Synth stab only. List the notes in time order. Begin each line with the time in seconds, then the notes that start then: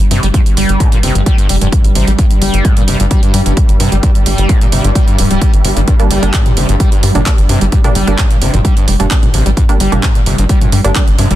5.99 G3 A#3 D4
6.23 G3 A#3 D4
7.15 G3 A#3 D4
7.26 G3 A#3 D4
7.84 G3 A#3 D4
8.07 G3 A#3 D4
9.00 G3 A#3 D4
9.11 G3 A#3 D4
9.69 G3 A#3 D4
9.92 G3 A#3 D4
10.84 G3 A#3 D4
10.95 G3 A#3 D4